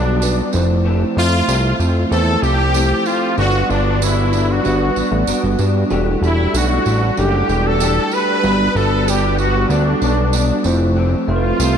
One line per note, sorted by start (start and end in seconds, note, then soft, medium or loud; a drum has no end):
0.00 0.42 B1 medium
0.00 0.20 F#3 soft
0.00 0.56 G3 medium
0.00 0.21 B3 soft
0.00 0.21 D4 medium
0.00 0.50 D4 medium
0.00 0.56 D4 medium
0.00 0.56 F#4 medium
0.00 0.56 B4 medium
0.21 0.53 G2 medium
0.21 0.54 F#3 medium
0.21 0.53 B3 medium
0.21 0.51 D4 medium
0.21 tambourine medium
0.52 1.05 F1 loud
0.52 0.84 E3 soft
0.52 1.04 F3 medium
0.52 1.04 A3 medium
0.52 0.84 A3 soft
0.52 0.84 C4 medium
0.52 1.04 E4 medium
0.52 1.05 C5 medium
0.52 tambourine soft
0.84 1.16 F2 medium
0.84 1.17 E3 medium
0.84 1.16 A3 medium
0.84 1.14 C4 loud
1.15 1.42 F2 medium
1.15 1.77 A3 medium
1.15 1.47 A3 medium
1.15 1.48 C4 medium
1.15 1.77 F4 loud
1.15 1.78 F4 medium
1.15 1.78 C5 medium
1.15 1.78 E5 medium
1.47 1.74 C2 medium
1.47 1.79 F2 medium
1.47 1.79 A3 medium
1.47 1.78 C4 medium
1.47 tambourine medium
1.79 2.05 F2 medium
1.79 2.11 E3 soft
1.79 2.12 A3 medium
1.79 2.11 C4 soft
1.79 tambourine soft
2.10 2.37 E2 medium
2.10 2.44 E3 medium
2.10 2.91 A3 medium
2.10 2.43 A3 medium
2.10 2.42 C4 medium
2.10 2.92 E4 medium
2.10 2.92 A4 medium
2.10 2.43 A4 medium
2.10 2.93 C5 medium
2.10 tambourine soft
2.42 2.93 C2 medium
2.42 2.74 E3 soft
2.42 2.74 A3 soft
2.42 2.75 C4 soft
2.42 3.07 G4 loud
2.42 tambourine soft
2.74 3.06 F2 medium
2.74 3.07 E3 medium
2.74 3.06 A3 medium
2.74 3.05 C4 medium
2.74 tambourine medium
3.06 3.38 A3 soft
3.06 3.38 C4 soft
3.06 3.37 F4 medium
3.06 tambourine soft
3.37 3.63 G1 loud
3.37 3.70 G2 medium
3.37 3.70 F#3 medium
3.37 3.58 G3 medium
3.37 3.70 B3 medium
3.37 3.58 D4 medium
3.37 3.69 D4 medium
3.37 3.71 F#4 loud
3.37 3.59 F#4 medium
3.37 3.59 B4 medium
3.37 tambourine soft
3.69 4.61 G1 medium
3.69 4.00 F#3 soft
3.69 4.30 G3 medium
3.69 4.01 B3 soft
3.69 4.30 D4 medium
3.69 4.04 D4 medium
3.69 4.01 D4 medium
3.69 4.30 F#4 medium
3.69 4.31 B4 medium
3.69 tambourine soft
4.01 4.33 G2 medium
4.01 4.33 F#3 medium
4.01 4.33 B3 medium
4.01 4.31 D4 medium
4.01 4.52 E4 medium
4.01 tambourine medium
4.32 4.63 F#3 soft
4.32 4.64 B3 soft
4.32 4.64 D4 soft
4.32 tambourine soft
4.51 5.60 F#4 medium
4.63 4.90 G1 medium
4.63 4.96 G2 medium
4.63 4.96 F#3 medium
4.63 5.44 G3 medium
4.63 4.95 B3 medium
4.63 5.44 D4 medium
4.63 4.94 D4 medium
4.63 5.45 F#4 medium
4.63 5.45 B4 medium
4.63 tambourine soft
4.95 5.03 A1 soft
4.95 5.26 F#3 soft
4.95 5.26 B3 soft
4.95 5.27 D4 soft
4.95 tambourine soft
5.11 5.24 A1 medium
5.27 5.33 G1 soft
5.27 5.59 G2 medium
5.27 5.59 F#3 medium
5.27 5.59 B3 medium
5.27 5.57 D4 medium
5.27 tambourine medium
5.44 5.56 G1 medium
5.59 5.84 G2 medium
5.59 5.90 F#3 soft
5.59 5.91 B3 soft
5.59 5.91 D4 medium
5.59 tambourine soft
5.88 6.16 E1 loud
5.88 6.22 E3 medium
5.88 6.10 G3 medium
5.88 6.23 A3 medium
5.88 6.10 D4 medium
5.88 6.23 D4 medium
5.88 6.11 F#4 medium
5.88 6.21 G4 medium
5.88 6.11 A4 medium
5.88 tambourine soft
6.21 6.47 E1 loud
6.21 6.82 G3 medium
6.21 6.83 D4 medium
6.21 6.54 D4 soft
6.21 6.83 F#4 medium
6.21 6.54 G4 medium
6.21 6.83 A4 medium
6.21 tambourine soft
6.25 6.53 A3 soft
6.25 6.58 E4 medium
6.54 6.79 B1 medium
6.54 6.86 E3 medium
6.54 6.86 A3 medium
6.54 6.86 D4 medium
6.54 7.21 F#4 medium
6.54 tambourine medium
6.86 7.11 A1 medium
6.86 7.17 A3 soft
6.86 7.18 D4 soft
6.86 tambourine soft
7.16 7.43 F#1 medium
7.16 7.49 E3 medium
7.16 7.97 G3 medium
7.16 7.49 A3 medium
7.16 7.98 D4 medium
7.16 7.48 D4 medium
7.16 7.47 G4 medium
7.16 7.68 G4 medium
7.16 7.99 A4 medium
7.16 7.98 F#5 medium
7.16 tambourine soft
7.48 7.99 E1 medium
7.48 7.79 A3 soft
7.48 7.80 D4 soft
7.48 7.80 G4 soft
7.48 tambourine soft
7.67 8.15 A4 medium
7.80 8.12 E3 medium
7.80 8.12 A3 medium
7.80 8.12 D4 medium
7.80 8.10 G4 medium
7.80 tambourine medium
8.11 8.45 A3 soft
8.11 8.44 D4 soft
8.11 8.43 G4 medium
8.11 8.78 B4 loud
8.11 tambourine soft
8.43 8.69 G1 medium
8.43 8.75 G2 medium
8.43 8.76 F#3 medium
8.43 8.63 G3 medium
8.43 8.75 B3 medium
8.43 8.64 D4 medium
8.43 8.74 D4 medium
8.43 8.64 F#4 medium
8.43 8.65 B4 medium
8.43 tambourine soft
8.74 9.66 G1 medium
8.74 9.08 F#3 soft
8.74 9.35 G3 medium
8.74 9.06 B3 soft
8.74 9.06 D4 medium
8.74 9.35 D4 medium
8.74 9.36 F#4 medium
8.74 9.10 A4 medium
8.74 9.36 B4 medium
8.74 tambourine soft
9.06 9.38 G2 medium
9.06 9.38 B3 medium
9.06 9.37 D4 medium
9.06 9.38 G4 medium
9.06 tambourine medium
9.38 9.69 F#3 soft
9.38 9.70 B3 soft
9.38 9.70 D4 soft
9.38 9.72 F#4 medium
9.38 tambourine soft
9.69 9.95 D2 loud
9.69 10.01 G2 medium
9.69 10.02 F#3 medium
9.69 10.50 G3 medium
9.69 10.02 B3 medium
9.69 10.50 D4 medium
9.69 10.65 D4 medium
9.69 10.00 D4 medium
9.69 10.51 F#4 medium
9.69 10.51 A4 medium
9.69 tambourine soft
10.01 10.52 B1 medium
10.01 10.32 F#3 soft
10.01 10.33 B3 soft
10.01 10.33 D4 soft
10.01 tambourine soft
10.33 10.64 G2 medium
10.33 10.65 F#3 medium
10.33 10.65 B3 medium
10.33 10.64 D4 medium
10.33 tambourine medium
10.63 11.15 F1 loud
10.63 10.96 E3 soft
10.63 11.15 F3 medium
10.63 11.14 A3 medium
10.63 10.97 A3 medium
10.63 10.96 C4 medium
10.63 11.15 E4 medium
10.63 11.16 C5 medium
10.63 tambourine soft
10.96 11.28 F2 medium
10.96 11.28 E3 medium
10.96 11.28 A3 medium
10.96 11.28 C4 medium
11.27 11.53 F1 medium
11.27 11.78 A3 medium
11.27 11.60 A3 soft
11.27 11.60 C4 medium
11.27 11.78 F4 medium
11.27 11.35 A4 medium
11.27 11.78 E5 medium
11.36 11.78 B4 medium
11.59 11.78 C2 medium
11.59 11.78 F2 medium
11.59 11.78 A3 medium
11.59 11.78 C4 medium
11.59 tambourine medium